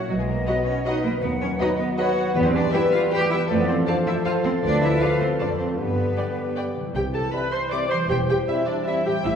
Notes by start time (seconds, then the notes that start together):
Already playing: A#2 F#3 A#3 E4 F#4 C#5 E5 F#5
0.00 C#4
0.08 B1 B2 F#3 F#4 D#5
0.18 G#3 B3 G#4
0.28 A#3 D#4 A#4
0.38 F#4
0.46 F#3 B3 F#4 B4 D#5 F#5
0.57 D#5
0.66 C#4 C#5 F#5
0.76 D#5
0.85 F#3 D#4 F#4 B4 D#5 F#5
0.95 B3
1.03 F#3 A#3 A#4
1.13 B3
1.22 D#2 D#3 B3 B4 F#5
1.31 D#4
1.41 C#4 F#4 C#5
1.50 B4
1.59 F#3 D#4 F#4 B4 D#5 B5
1.69 F#5
1.78 B3 B4 B5
1.88 F#5
1.97 F#3 F#4 B4 C#5 D#5 F#5 B5
2.07 D#4
2.16 B3
2.25 D#4
2.34 E2 E3 G3 B3 B4
2.44 B3 C4 C5
2.54 D4 G4 D5
2.63 B3
2.73 E4 G4 B4 E5 G5
2.83 G5
2.92 F4 B4 F5
3.01 G5
3.11 G4 B4 G5
3.21 B3
3.30 E4 E5
3.40 B3
3.49 F2 F3 A3 A4 D5
3.57 B3 F4 B4
3.67 C4 A4 C5
3.78 F4
3.87 D4 F4 A4 C5 D5 F5 A5
3.96 A5
4.06 E4 E5 F5
4.15 A5
4.25 F4 A4 C5 F5 A5
4.34 F4
4.43 A3 C4 C5
4.53 F4
4.63 D2 D3 D4 B4 D5
4.72 A3
4.82 E4 F4 E5
4.91 A4
5.01 F4 A4 D5 F5 A5
5.11 F5
5.20 C4 C5 A5
5.30 F5
5.39 F2 D4 A4 D5 F5 A5
5.49 A3
5.59 C4 D4 C5
5.68 A4
5.78 G2 D3 B3 G4 B4
5.87 G3
5.97 D4
6.07 D5
6.17 G4 D5 G5
6.27 D5
6.37 D6
6.46 D5
6.56 D4 G4 D5 G5
6.66 G3
6.75 C3 D3
6.81 G3
6.86 E4
6.90 E3 C5
6.95 C2 C3 G4 C5 G5
7.13 A4 A5
7.33 G3 C4 B4 E5 B5
7.52 C5 C6
7.71 G3 C4 D5 E5 D6
7.91 E3 C5 C6
7.97 G3
8.01 E4
8.06 E2 G3 G4 C5 G5
8.10 E1 G5
8.29 G4 G5
8.47 G3 C4 E4 E5
8.67 D4 D5
8.86 G3 C4 E4 E5
9.05 A2 G4 G5
9.10 G3
9.15 E4
9.20 C5
9.24 A1 A2 E4 C5 E5